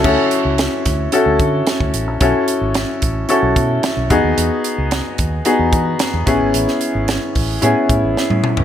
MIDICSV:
0, 0, Header, 1, 4, 480
1, 0, Start_track
1, 0, Tempo, 541516
1, 40, Time_signature, 4, 2, 24, 8
1, 7664, End_track
2, 0, Start_track
2, 0, Title_t, "Grand piano"
2, 0, Program_c, 0, 0
2, 0, Control_c, 0, 64, 127
2, 35, Note_on_c, 0, 61, 75
2, 37, Note_on_c, 0, 64, 68
2, 42, Note_on_c, 0, 66, 66
2, 46, Note_on_c, 0, 69, 81
2, 52, Control_c, 0, 64, 0
2, 233, Control_c, 0, 64, 127
2, 728, Note_off_c, 0, 61, 0
2, 729, Note_off_c, 0, 64, 0
2, 731, Note_off_c, 0, 66, 0
2, 733, Note_off_c, 0, 69, 0
2, 996, Note_on_c, 0, 61, 70
2, 998, Note_on_c, 0, 64, 64
2, 1000, Note_on_c, 0, 66, 68
2, 1006, Note_on_c, 0, 69, 81
2, 1688, Note_off_c, 0, 61, 0
2, 1689, Note_off_c, 0, 64, 0
2, 1691, Note_off_c, 0, 66, 0
2, 1693, Note_off_c, 0, 69, 0
2, 1954, Note_on_c, 0, 61, 76
2, 1958, Note_on_c, 0, 64, 68
2, 1964, Note_on_c, 0, 66, 68
2, 1967, Note_on_c, 0, 69, 78
2, 1970, Control_c, 0, 64, 0
2, 2101, Control_c, 0, 64, 127
2, 2648, Note_off_c, 0, 61, 0
2, 2650, Note_off_c, 0, 64, 0
2, 2652, Note_off_c, 0, 66, 0
2, 2654, Note_off_c, 0, 69, 0
2, 2914, Note_on_c, 0, 61, 73
2, 2917, Note_on_c, 0, 64, 67
2, 2920, Note_on_c, 0, 66, 69
2, 2925, Note_on_c, 0, 69, 83
2, 3608, Note_off_c, 0, 61, 0
2, 3609, Note_off_c, 0, 64, 0
2, 3611, Note_off_c, 0, 66, 0
2, 3613, Note_off_c, 0, 69, 0
2, 3635, Note_on_c, 0, 59, 84
2, 3639, Note_on_c, 0, 63, 73
2, 3641, Note_on_c, 0, 66, 73
2, 3644, Note_on_c, 0, 68, 91
2, 3651, Control_c, 0, 64, 0
2, 3795, Control_c, 0, 64, 127
2, 4406, Note_off_c, 0, 59, 0
2, 4408, Note_off_c, 0, 63, 0
2, 4409, Note_off_c, 0, 66, 0
2, 4410, Note_off_c, 0, 68, 0
2, 4834, Note_on_c, 0, 59, 75
2, 4837, Note_on_c, 0, 63, 70
2, 4841, Note_on_c, 0, 66, 69
2, 4844, Note_on_c, 0, 68, 87
2, 5528, Note_off_c, 0, 59, 0
2, 5529, Note_off_c, 0, 63, 0
2, 5531, Note_off_c, 0, 66, 0
2, 5533, Note_off_c, 0, 68, 0
2, 5551, Note_on_c, 0, 59, 76
2, 5555, Note_on_c, 0, 61, 76
2, 5559, Note_on_c, 0, 64, 72
2, 5562, Note_on_c, 0, 68, 92
2, 5572, Control_c, 0, 64, 0
2, 5706, Control_c, 0, 64, 127
2, 6323, Note_off_c, 0, 59, 0
2, 6325, Note_off_c, 0, 61, 0
2, 6327, Note_off_c, 0, 64, 0
2, 6329, Note_off_c, 0, 68, 0
2, 6751, Note_on_c, 0, 59, 71
2, 6754, Note_on_c, 0, 61, 70
2, 6760, Note_on_c, 0, 64, 70
2, 6762, Note_on_c, 0, 68, 77
2, 7445, Note_off_c, 0, 59, 0
2, 7447, Note_off_c, 0, 61, 0
2, 7450, Note_off_c, 0, 64, 0
2, 7451, Note_off_c, 0, 68, 0
2, 7664, End_track
3, 0, Start_track
3, 0, Title_t, "Fingered electric bass"
3, 0, Program_c, 1, 33
3, 39, Note_on_c, 1, 38, 91
3, 134, Note_off_c, 1, 38, 0
3, 400, Note_on_c, 1, 37, 84
3, 589, Note_off_c, 1, 37, 0
3, 760, Note_on_c, 1, 38, 78
3, 949, Note_off_c, 1, 38, 0
3, 1117, Note_on_c, 1, 38, 83
3, 1213, Note_off_c, 1, 38, 0
3, 1236, Note_on_c, 1, 50, 89
3, 1427, Note_off_c, 1, 50, 0
3, 1599, Note_on_c, 1, 38, 76
3, 1694, Note_off_c, 1, 38, 0
3, 1720, Note_on_c, 1, 33, 71
3, 1837, Note_off_c, 1, 33, 0
3, 1837, Note_on_c, 1, 34, 75
3, 1933, Note_off_c, 1, 34, 0
3, 1958, Note_on_c, 1, 35, 95
3, 2053, Note_off_c, 1, 35, 0
3, 2317, Note_on_c, 1, 32, 79
3, 2508, Note_off_c, 1, 32, 0
3, 2680, Note_on_c, 1, 33, 74
3, 2869, Note_off_c, 1, 33, 0
3, 3037, Note_on_c, 1, 35, 91
3, 3133, Note_off_c, 1, 35, 0
3, 3157, Note_on_c, 1, 47, 99
3, 3348, Note_off_c, 1, 47, 0
3, 3518, Note_on_c, 1, 35, 82
3, 3613, Note_off_c, 1, 35, 0
3, 3639, Note_on_c, 1, 40, 82
3, 3734, Note_off_c, 1, 40, 0
3, 3759, Note_on_c, 1, 39, 74
3, 3854, Note_off_c, 1, 39, 0
3, 3880, Note_on_c, 1, 40, 88
3, 3975, Note_off_c, 1, 40, 0
3, 4240, Note_on_c, 1, 37, 77
3, 4429, Note_off_c, 1, 37, 0
3, 4599, Note_on_c, 1, 39, 73
3, 4789, Note_off_c, 1, 39, 0
3, 4958, Note_on_c, 1, 40, 94
3, 5054, Note_off_c, 1, 40, 0
3, 5074, Note_on_c, 1, 52, 88
3, 5266, Note_off_c, 1, 52, 0
3, 5439, Note_on_c, 1, 40, 82
3, 5534, Note_off_c, 1, 40, 0
3, 5557, Note_on_c, 1, 33, 84
3, 5653, Note_off_c, 1, 33, 0
3, 5683, Note_on_c, 1, 32, 72
3, 5776, Note_off_c, 1, 32, 0
3, 5800, Note_on_c, 1, 33, 100
3, 5895, Note_off_c, 1, 33, 0
3, 6160, Note_on_c, 1, 32, 79
3, 6350, Note_off_c, 1, 32, 0
3, 6520, Note_on_c, 1, 33, 78
3, 6709, Note_off_c, 1, 33, 0
3, 6761, Note_on_c, 1, 45, 86
3, 6855, Note_off_c, 1, 45, 0
3, 6997, Note_on_c, 1, 45, 90
3, 7093, Note_off_c, 1, 45, 0
3, 7120, Note_on_c, 1, 33, 81
3, 7214, Note_off_c, 1, 33, 0
3, 7358, Note_on_c, 1, 45, 88
3, 7453, Note_off_c, 1, 45, 0
3, 7599, Note_on_c, 1, 37, 74
3, 7664, Note_off_c, 1, 37, 0
3, 7664, End_track
4, 0, Start_track
4, 0, Title_t, "Drums"
4, 37, Note_on_c, 9, 49, 78
4, 39, Note_on_c, 9, 36, 83
4, 125, Note_off_c, 9, 49, 0
4, 127, Note_off_c, 9, 36, 0
4, 276, Note_on_c, 9, 42, 59
4, 365, Note_off_c, 9, 42, 0
4, 517, Note_on_c, 9, 42, 69
4, 524, Note_on_c, 9, 38, 98
4, 605, Note_off_c, 9, 42, 0
4, 613, Note_off_c, 9, 38, 0
4, 758, Note_on_c, 9, 42, 72
4, 762, Note_on_c, 9, 36, 70
4, 762, Note_on_c, 9, 38, 28
4, 847, Note_off_c, 9, 42, 0
4, 850, Note_off_c, 9, 36, 0
4, 850, Note_off_c, 9, 38, 0
4, 994, Note_on_c, 9, 42, 80
4, 1083, Note_off_c, 9, 42, 0
4, 1237, Note_on_c, 9, 36, 83
4, 1237, Note_on_c, 9, 42, 61
4, 1325, Note_off_c, 9, 36, 0
4, 1326, Note_off_c, 9, 42, 0
4, 1477, Note_on_c, 9, 42, 75
4, 1482, Note_on_c, 9, 38, 98
4, 1565, Note_off_c, 9, 42, 0
4, 1571, Note_off_c, 9, 38, 0
4, 1600, Note_on_c, 9, 36, 72
4, 1688, Note_off_c, 9, 36, 0
4, 1717, Note_on_c, 9, 42, 66
4, 1806, Note_off_c, 9, 42, 0
4, 1955, Note_on_c, 9, 42, 75
4, 1958, Note_on_c, 9, 36, 92
4, 2044, Note_off_c, 9, 42, 0
4, 2047, Note_off_c, 9, 36, 0
4, 2197, Note_on_c, 9, 42, 63
4, 2285, Note_off_c, 9, 42, 0
4, 2433, Note_on_c, 9, 42, 68
4, 2441, Note_on_c, 9, 38, 95
4, 2522, Note_off_c, 9, 42, 0
4, 2529, Note_off_c, 9, 38, 0
4, 2677, Note_on_c, 9, 42, 77
4, 2682, Note_on_c, 9, 36, 72
4, 2766, Note_off_c, 9, 42, 0
4, 2770, Note_off_c, 9, 36, 0
4, 2914, Note_on_c, 9, 42, 74
4, 3003, Note_off_c, 9, 42, 0
4, 3157, Note_on_c, 9, 36, 84
4, 3159, Note_on_c, 9, 42, 60
4, 3246, Note_off_c, 9, 36, 0
4, 3248, Note_off_c, 9, 42, 0
4, 3397, Note_on_c, 9, 42, 78
4, 3402, Note_on_c, 9, 38, 105
4, 3485, Note_off_c, 9, 42, 0
4, 3491, Note_off_c, 9, 38, 0
4, 3637, Note_on_c, 9, 42, 65
4, 3639, Note_on_c, 9, 36, 92
4, 3726, Note_off_c, 9, 42, 0
4, 3728, Note_off_c, 9, 36, 0
4, 3880, Note_on_c, 9, 42, 82
4, 3968, Note_off_c, 9, 42, 0
4, 4116, Note_on_c, 9, 42, 60
4, 4205, Note_off_c, 9, 42, 0
4, 4354, Note_on_c, 9, 42, 70
4, 4361, Note_on_c, 9, 38, 94
4, 4442, Note_off_c, 9, 42, 0
4, 4450, Note_off_c, 9, 38, 0
4, 4594, Note_on_c, 9, 42, 73
4, 4600, Note_on_c, 9, 36, 70
4, 4683, Note_off_c, 9, 42, 0
4, 4689, Note_off_c, 9, 36, 0
4, 4832, Note_on_c, 9, 42, 78
4, 4920, Note_off_c, 9, 42, 0
4, 5076, Note_on_c, 9, 36, 84
4, 5076, Note_on_c, 9, 42, 59
4, 5164, Note_off_c, 9, 36, 0
4, 5164, Note_off_c, 9, 42, 0
4, 5313, Note_on_c, 9, 42, 81
4, 5318, Note_on_c, 9, 38, 103
4, 5401, Note_off_c, 9, 42, 0
4, 5407, Note_off_c, 9, 38, 0
4, 5556, Note_on_c, 9, 42, 69
4, 5558, Note_on_c, 9, 36, 91
4, 5645, Note_off_c, 9, 42, 0
4, 5646, Note_off_c, 9, 36, 0
4, 5797, Note_on_c, 9, 42, 77
4, 5886, Note_off_c, 9, 42, 0
4, 5919, Note_on_c, 9, 38, 32
4, 6008, Note_off_c, 9, 38, 0
4, 6034, Note_on_c, 9, 42, 59
4, 6123, Note_off_c, 9, 42, 0
4, 6275, Note_on_c, 9, 42, 66
4, 6283, Note_on_c, 9, 38, 95
4, 6364, Note_off_c, 9, 42, 0
4, 6371, Note_off_c, 9, 38, 0
4, 6519, Note_on_c, 9, 46, 73
4, 6522, Note_on_c, 9, 36, 74
4, 6607, Note_off_c, 9, 46, 0
4, 6611, Note_off_c, 9, 36, 0
4, 6756, Note_on_c, 9, 42, 78
4, 6845, Note_off_c, 9, 42, 0
4, 6998, Note_on_c, 9, 36, 80
4, 7001, Note_on_c, 9, 42, 65
4, 7087, Note_off_c, 9, 36, 0
4, 7089, Note_off_c, 9, 42, 0
4, 7245, Note_on_c, 9, 38, 52
4, 7334, Note_off_c, 9, 38, 0
4, 7361, Note_on_c, 9, 48, 54
4, 7450, Note_off_c, 9, 48, 0
4, 7478, Note_on_c, 9, 45, 75
4, 7566, Note_off_c, 9, 45, 0
4, 7598, Note_on_c, 9, 43, 80
4, 7664, Note_off_c, 9, 43, 0
4, 7664, End_track
0, 0, End_of_file